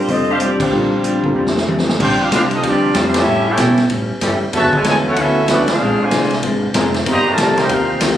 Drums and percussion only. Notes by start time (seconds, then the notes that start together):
0.08 kick, open hi-hat
0.40 closed hi-hat
0.60 kick, crash
1.04 closed hi-hat
1.24 kick
1.47 snare
1.58 snare
1.68 high tom
1.79 snare
1.89 snare
2.00 kick, crash
2.32 kick, snare, hi-hat pedal, ride
2.51 ride
2.63 kick, ride
2.94 kick, snare, hi-hat pedal, ride
3.14 snare, ride
3.57 kick, snare, hi-hat pedal, ride
3.78 snare, ride
3.90 kick, ride
4.21 kick, snare, hi-hat pedal, ride
4.53 kick, ride
4.73 kick
4.84 kick, snare, hi-hat pedal, ride
5.16 kick, ride
5.48 kick, snare, hi-hat pedal, ride
5.68 snare, ride
6.11 kick, snare, hi-hat pedal, ride
6.23 snare
6.30 snare, ride
6.43 kick, ride
6.74 kick, snare, hi-hat pedal, ride
6.94 snare, ride
7.06 kick, ride
7.38 kick, snare, hi-hat pedal, ride
7.57 snare, ride
7.69 kick, ride
8.01 kick, snare, hi-hat pedal, ride